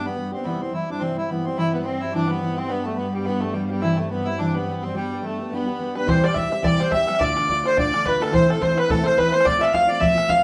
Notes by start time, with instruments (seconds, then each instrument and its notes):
Already playing: string section G2
0.04 accordion B3, steel-string acoustic guitar B3 D4 G4
0.15 steel-string acoustic guitar G3 B3 D4 G4
0.32 steel-string acoustic guitar B3 D4 G4, accordion C4
0.44 steel-string acoustic guitar C3 E3 G3 C4 E4, accordion B3
0.60 steel-string acoustic guitar G3 C4 E4, accordion C4
0.72 steel-string acoustic guitar E3 G3 C4 E4, accordion E4
0.87 steel-string acoustic guitar G3 C4 E4, accordion D4
0.99 steel-string acoustic guitar C3 E3 G3 C4 E4, accordion C4
1.15 steel-string acoustic guitar G3 C4 E4, accordion E4
1.29 steel-string acoustic guitar E3 G3 C4 E4, accordion B3
1.45 steel-string acoustic guitar G3 C4 E4, accordion C4
1.55 string section G2, steel-string acoustic guitar C3 E3 G3 C4 E4, fiddle E4, accordion E4
1.73 steel-string acoustic guitar G3 C4 E4, accordion B3, fiddle B3
1.84 steel-string acoustic guitar E3 G3 C4, fiddle C4, accordion C4
1.88 steel-string acoustic guitar E4
2.00 steel-string acoustic guitar G3 C4 E4, accordion E4
2.13 steel-string acoustic guitar C3 E3 G3 C4 E4, fiddle D4, accordion D4
2.27 steel-string acoustic guitar G3 C4 E4, fiddle B3, accordion B3
2.41 steel-string acoustic guitar E3 G3 C4 E4
2.57 steel-string acoustic guitar G3 C4 E4, fiddle C4, accordion C4
2.68 steel-string acoustic guitar G3 B3 D4 G4, fiddle B3, accordion B3
2.84 accordion A3, fiddle A3, steel-string acoustic guitar D4 G4
2.89 steel-string acoustic guitar B3
2.95 steel-string acoustic guitar G3 B3 D4, accordion B3, fiddle B3
3.01 steel-string acoustic guitar G4
3.12 accordion G3, fiddle G3, steel-string acoustic guitar G4
3.17 steel-string acoustic guitar B3 D4
3.25 steel-string acoustic guitar G3 B3, accordion B3, fiddle B3
3.29 steel-string acoustic guitar D4 G4
3.40 fiddle A3, accordion A3, steel-string acoustic guitar D4 G4
3.44 steel-string acoustic guitar B3
3.52 accordion G3, fiddle G3, steel-string acoustic guitar G3 B3 D4
3.57 steel-string acoustic guitar G4
3.66 accordion F3
3.70 fiddle G3, accordion G3, steel-string acoustic guitar B3 D4 G4
3.82 steel-string acoustic guitar C3 E3 G3 C4 G4, accordion E4, fiddle E4
3.96 accordion A3, fiddle A3, steel-string acoustic guitar C4 G4
4.00 steel-string acoustic guitar G3
4.09 steel-string acoustic guitar E3 G3 C4 G4, fiddle B3, accordion B3
4.25 steel-string acoustic guitar G3 C4 G4, accordion E4, fiddle E4
4.38 steel-string acoustic guitar C3 E3 G3 C4 G4, accordion D4, fiddle D4
4.54 steel-string acoustic guitar G3 C4 G4, fiddle B3, accordion B3
4.67 steel-string acoustic guitar E3 G3 C4 G4
4.82 accordion C4, fiddle C4, steel-string acoustic guitar C4 G4
4.86 steel-string acoustic guitar G3
4.94 steel-string acoustic guitar G3 B3 D4 G4, fiddle G3, accordion G3
5.11 steel-string acoustic guitar B3 D4 G4
5.22 steel-string acoustic guitar G3 B3 D4 G4, fiddle A3, accordion A3
5.39 steel-string acoustic guitar B3 D4 G4
5.51 steel-string acoustic guitar G3 B3 D4 G4, fiddle B3, accordion B3
5.66 steel-string acoustic guitar B3 D4 G4
5.79 steel-string acoustic guitar G3 B3 D4 G4
5.95 steel-string acoustic guitar B3 D4 G4, five-string banjo B4, fiddle B4, accordion B4
6.06 steel-string acoustic guitar C3 E3 G3 C4 G4, fiddle C5, five-string banjo C5, bodhran
6.10 accordion C5
6.21 steel-string acoustic guitar G3 C4 G4, five-string banjo D5, bodhran
6.25 fiddle D5, accordion D5
6.34 steel-string acoustic guitar E3 G3 C4 G4, five-string banjo E5, fiddle E5, accordion E5, bodhran
6.50 steel-string acoustic guitar G3 C4 G4, five-string banjo E5
6.62 steel-string acoustic guitar C3 E3 G3 C4 G4, five-string banjo D5, fiddle D5, bodhran
6.67 accordion D5
6.78 steel-string acoustic guitar G3 C4 G4, five-string banjo C5, accordion C5, bodhran
6.90 steel-string acoustic guitar E3 G3 C4 G4, fiddle E5, five-string banjo E5, bodhran
6.95 accordion E5
7.07 steel-string acoustic guitar G3 C4 G4, five-string banjo E5, bodhran
7.15 bodhran
7.19 steel-string acoustic guitar D2 A2 D3 A3 D4 F4, fiddle D5, five-string banjo D5, accordion D5, bodhran
7.35 steel-string acoustic guitar D3 A3 D4 F4, bodhran
7.48 steel-string acoustic guitar D3 A3 D4 F4, fiddle D5, bodhran
7.64 steel-string acoustic guitar D3 A3 D4 F4, fiddle C5, five-string banjo C5, accordion C5, bodhran
7.77 steel-string acoustic guitar D2 A2 D3 A3 D4 F4, five-string banjo D5, fiddle D5, accordion D5, bodhran
7.93 steel-string acoustic guitar D3 A3 D4 F4, bodhran
8.04 steel-string acoustic guitar D3 A3 D4 F4, fiddle B4, five-string banjo B4, accordion B4, bodhran
8.20 steel-string acoustic guitar D3 A3 D4 F4, fiddle A4, five-string banjo A4, accordion A4, bodhran
8.28 steel-string acoustic guitar A2 E3, bodhran
8.32 steel-string acoustic guitar A3 C4 E4, five-string banjo C5, fiddle C5, accordion C5, bodhran
8.47 steel-string acoustic guitar A3 C4 E4, fiddle A4, five-string banjo A4, accordion A4, bodhran
8.59 steel-string acoustic guitar E3 A3 C4 E4, fiddle C5, accordion C5, five-string banjo C5, bodhran
8.75 steel-string acoustic guitar A3 E4, five-string banjo B4, accordion B4, bodhran
8.79 fiddle B4
8.88 steel-string acoustic guitar A2 E3 A3 C4 E4, accordion A4, five-string banjo A4, fiddle A4, bodhran
9.03 steel-string acoustic guitar A3 C4 E4, five-string banjo C5, fiddle C5, accordion C5, bodhran
9.17 steel-string acoustic guitar E3 A3 C4 E4, five-string banjo B4, accordion B4, fiddle B4, bodhran
9.32 steel-string acoustic guitar A3 C4 E4, five-string banjo C5, accordion C5, fiddle C5
9.41 steel-string acoustic guitar F3, bodhran
9.45 steel-string acoustic guitar A3 C4 F4, five-string banjo D5, accordion D5, fiddle D5, bodhran
9.58 steel-string acoustic guitar A3 C4 F4, five-string banjo E5, accordion E5
9.63 fiddle E5, bodhran
9.71 steel-string acoustic guitar F3 A3 C4 F4, accordion F5, five-string banjo F5, bodhran
9.75 fiddle F5
9.87 steel-string acoustic guitar A3 C4 F4, accordion D5
9.91 fiddle D5
10.00 steel-string acoustic guitar F3 A3 C4 F4, accordion E5, five-string banjo E5, fiddle E5, bodhran
10.15 steel-string acoustic guitar A3 C4 F4, bodhran
10.27 steel-string acoustic guitar F3 A3 C4, accordion F5, five-string banjo F5, bodhran
10.31 steel-string acoustic guitar F4, fiddle F5